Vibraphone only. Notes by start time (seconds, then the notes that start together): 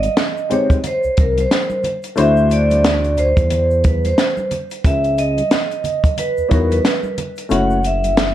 Already playing: D#5
0.53 C#5
0.87 C5
1.20 A#4
1.40 C5
2.20 E5
2.53 D5
3.19 C5
3.86 B4
4.06 C5
4.86 E5
5.19 D#5
6.19 B4
6.53 A#4
6.72 B4
7.52 F#5
7.86 E5